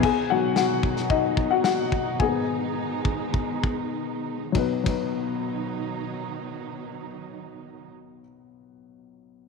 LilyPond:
<<
  \new Staff \with { instrumentName = "Upright piano" } { \time 4/4 \key b \major \tempo 4 = 96 <gis' gis''>8 <fis' fis''>8 <fis' fis''>4 <dis' dis''>8. <fis' fis''>16 <fis' fis''>4 | <gis' gis''>2. r4 | <fis b dis' b'>8 <fis b dis' b'>2.~ <fis b dis' b'>8~ | <fis b dis' b'>1 | }
  \new Staff \with { instrumentName = "Upright piano" } { \clef bass \time 4/4 \key b \major r8 <b, dis fis>2.~ <b, dis fis>8 | <gis, dis b>4. r2 r8 | b,,8 b,,2.~ b,,8~ | b,,1 | }
  \new Staff \with { instrumentName = "String section" } { \clef bass \time 4/4 \key b \major << { <b, dis'>1~ | <b, dis'>1 | <b, dis fis dis'>1~ | <b, dis fis dis'>1 | } \\ { <dis fis>1 | <dis gis>1 | r1 | r1 | } >> }
  \new DrumStaff \with { instrumentName = "Drums" } \drummode { \time 4/4 <cymc bd>4 sn8 bd16 sn16 bd8 bd8 sn8 bd8 | bd4 r8 bd8 bd8 bd8 r4 | <bd cymr>8 <bd cymr>8 r4 r4 r4 | r4 r4 r4 r4 | }
>>